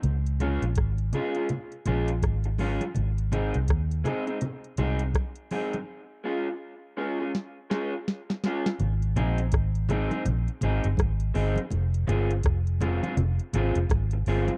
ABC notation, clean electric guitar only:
X:1
M:4/4
L:1/16
Q:"Swing 16ths" 1/4=82
K:Ab
V:1 name="Clean electric guitar"
z2 [A,DFA] z3 [A,DFA] [A,DFA] z2 [A,DFA] z3 [A,DFA] z | z2 [A,CEA] z3 [A,CEA] [A,CEA] z2 [A,CEA] z3 [A,CEA] z | z2 [A,DFA] z3 [A,DFA] [A,DFA] z2 [A,DFA] z3 [A,DFA] z | z2 [A,CEA] z3 [A,CEA] [A,CEA] z2 [A,CEA] z3 [A,CEA] z |
z2 [A,CFA] z3 [A,CFA] [A,CFA] z2 [A,CFA] z3 [A,CFA] z |]